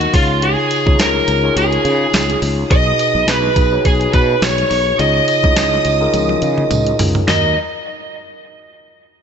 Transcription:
Already playing: D#3 D#4 F#4 A#4 D#5 F#5
0.01 closed hi-hat
0.13 C#2 C#3 D#4 F4 G#4 C#5 F5, kick, open hi-hat, tambourine
0.42 G#4 G#5, closed hi-hat
0.71 closed hi-hat, tambourine
0.86 C#2 D#4 F4 G#4 C#5, kick
0.99 C#2 A#4 A#5, snare, closed hi-hat, tambourine
1.27 C#2, closed hi-hat, tambourine
1.43 D#4 F4 G#4 C#5
1.56 C#2 G#4 G#5, closed hi-hat, tambourine
1.72 closed hi-hat
1.85 C#3, closed hi-hat, tambourine
2.13 C#2, snare, closed hi-hat, tambourine
2.30 closed hi-hat
2.42 C#2, open hi-hat, tambourine
2.70 B1 B2 D#4 F#4 G#4 B4 D#5 D#6, kick, closed hi-hat, tambourine
2.99 closed hi-hat, tambourine
3.15 B1
3.28 B1 B4 B5, snare, closed hi-hat, tambourine
3.56 B1 D#4 F#4 G#4 B4, kick, closed hi-hat, tambourine
3.72 D#4 F#4 G#4 C#5
3.85 B1 G#4 G#5, kick, closed hi-hat, tambourine
4.01 closed hi-hat
4.13 B2 B4 B5, kick, closed hi-hat, tambourine
4.42 B1 C#5 C#6, snare, closed hi-hat, tambourine
4.58 closed hi-hat
4.71 B1, open hi-hat, tambourine
4.99 C#2 C#3 D#4 F4 G#4 C#5 D#5 D#6, closed hi-hat, tambourine
5.28 closed hi-hat, tambourine
5.43 C#2 D#4 E4 G#4 C#5, kick
5.50 F4
5.56 C#2, snare, closed hi-hat, tambourine
5.85 C#2, closed hi-hat, tambourine
6.00 D#4 F4 G#4 A#4
6.14 C#2, closed hi-hat, high tom, tambourine
6.29 high tom
6.42 C#3, closed hi-hat, tambourine
6.58 mid tom
6.71 C#2, closed hi-hat, mid tom, tambourine
6.87 closed hi-hat
6.99 C#2, floor tom, open hi-hat, tambourine
7.15 floor tom
7.28 D#2 D#4 F#4 A#4 D#5, snare, tambourine

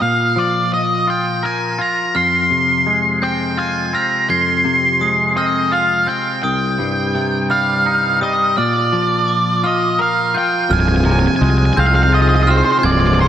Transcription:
0.01 A#2 F5
0.36 F3 D5
0.74 D#5
1.07 F4 G5
1.43 A#4 G#5
1.78 F4 A#5
2.15 F2 C6 F6
2.51 C3
2.86 G#3
3.22 C4 G5 G6
3.57 F4 G#5
3.93 C4 A#5 F6
4.29 F2 C6 G#6
4.65 C3
5.01 G#3 D#6
5.36 C4 D#5 F6
5.72 F4 F5
6.07 C4 G5 G6
6.43 C2 G5 D#6
6.79 G2
7.15 C3
7.50 G3 F5 F6
7.86 D#4
8.21 G3 D#5 D#6
8.57 A#2 D5 F6
8.92 F3
9.28 D6
9.64 F4 D#5 F6
9.99 A#4 F5
10.34 F4 G5 G6
10.70 C1 F2 C3 C4 D#4 F4 G#4 G#5 F6
10.80 G#5
10.88 G#5
10.96 G#5
11.05 C3 G#5
11.11 G#5
11.19 G#5
11.27 G#5
11.36 G#5
11.41 C2 G#3 G#5
11.50 G#5
11.58 G#5
11.65 G#5
11.73 C4 G#5
11.77 C2 F5 G6
11.86 F5
11.95 F5
12.03 F5
12.12 F4 D#5
12.22 D#5
12.29 D#5
12.36 D#5
12.43 D#5
12.47 C4 C5 F6
12.57 C5
12.65 C5
12.72 C5
12.79 C5
12.83 C1 F2 D5 G#6
12.92 D5
13.00 D5
13.07 D5
13.14 D5
13.19 C3 C5

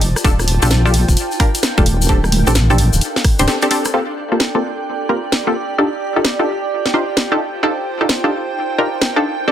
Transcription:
Already playing: F4 C5 G5 A5
0.01 F1, open hi-hat
0.16 cross-stick, shaker
0.24 D#1 D4 D#4 F4 G4 A4, kick, closed hi-hat, shaker
0.39 cross-stick, shaker
0.48 open hi-hat
0.62 A#1 D4 F4 G4 A4, shaker
0.71 snare, closed hi-hat, shaker
0.85 D4 F4 G4 A4, shaker
0.90 F5
0.94 open hi-hat
1.09 D#1, kick, shaker
1.17 closed hi-hat, shaker
1.31 shaker
1.40 D4 F4 G4 A#4, kick, cross-stick, open hi-hat
1.55 closed hi-hat, shaker
1.63 snare, closed hi-hat, shaker
1.78 D#1 D4 F4 G4 A4, kick, closed hi-hat, high conga, shaker
1.86 open hi-hat
2.02 shaker
2.09 D1 C4 D4 G4 A4, kick, closed hi-hat
2.17 A4
2.24 cross-stick, shaker
2.32 D5, open hi-hat, high conga
2.47 A1 C4 D4 G4 A4, shaker
2.55 snare, closed hi-hat, shaker
2.70 C4 D4 G4 A4, shaker
2.78 open hi-hat
2.93 D1, shaker
3.01 closed hi-hat, shaker
3.16 snare, shaker
3.24 kick, cross-stick, open hi-hat
3.39 D1 C4 D4 G4 C5, closed hi-hat, shaker
3.48 C4 D4 G4 A4, snare, closed hi-hat, shaker
3.62 C4 D4 G4 A4, closed hi-hat, shaker
3.71 C4 D4 G4 A4, open hi-hat
3.85 cross-stick, closed hi-hat, shaker
3.94 A#3 C4 F4 G4 A4 G5
4.32 A#3 C4 F4 G4 A4
4.40 snare
4.55 A#3 C4 F4 G4 A4
5.09 A#3 C4 F4 G4 A#4
5.32 snare
5.47 A#3 C4 F4 G4 A4
5.78 D4 D#4 F4 G4 A4
6.01 C5
6.16 D4 D#4 F4 G4 A4
6.25 snare
6.39 D4 D#4 F4 G4 A4
6.53 A5
6.64 G5
6.86 snare
6.94 D4 D#4 F4 G4 C5
7.17 snare
7.32 D4 D#4 F4 G4 A4
7.63 D4 D#4 F4 G4 A4
8.01 D4 D#4 F4 G4 A4
8.09 snare
8.24 D4 D#4 F4 G4 A4
8.30 F5
8.78 D4 D#4 F4 G4 A#4
9.02 snare
9.16 D4 D#4 F4 G4 A4
9.48 C4 D4 G4 A4

